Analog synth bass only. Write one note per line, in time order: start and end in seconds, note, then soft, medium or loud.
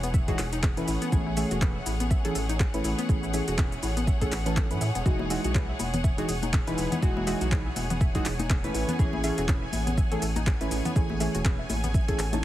0.00 0.33 E1 medium
0.38 0.82 E1 loud
0.88 0.97 A1 medium
1.12 1.44 A1 loud
1.51 1.81 E1 medium
1.86 2.30 A1 medium
2.35 2.67 A1 loud
2.74 2.81 A1 medium
2.84 2.94 A1 medium
3.09 3.40 A1 loud
3.48 3.77 E1 medium
3.83 4.26 A1 medium
4.32 4.72 A1 loud
4.71 4.78 A2 loud
4.81 4.91 A2 medium
4.95 5.02 E1 medium
5.06 5.37 E1 loud
5.44 5.74 B1 medium
5.79 6.23 E1 medium
6.29 6.60 E1 loud
6.67 6.74 E1 medium
6.78 6.87 E1 medium
7.02 7.34 E1 loud
7.41 7.71 B1 medium
7.76 8.20 E1 medium
8.25 8.69 E1 loud
8.74 8.84 A1 medium
8.99 9.30 A1 loud
9.38 9.67 E1 medium
9.73 10.17 A1 medium
10.22 10.53 A1 loud
10.61 10.68 A1 medium
10.71 10.81 A1 medium
10.96 11.27 A1 loud
11.35 11.64 E1 medium
11.70 12.13 A1 medium
12.19 12.45 A1 loud